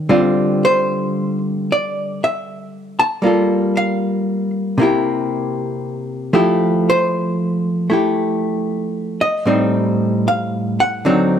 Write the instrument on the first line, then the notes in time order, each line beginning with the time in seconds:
hollow-body jazz guitar
Already playing: G4
0.09 D3 G3 C4 F4
0.65 C5
1.72 D5
2.24 E5
2.99 A5
3.22 G3 A#3 F4
3.27 A4
3.77 F5
4.78 C3 A#3 E4
4.83 G4
6.33 F3 A3 E4 G4
6.90 C5
7.90 A3 E4 G4
9.21 D#5
9.46 A2 G3 C4 D#4
10.28 F5
10.80 F#5
11.05 D3 F#3 C4 D#4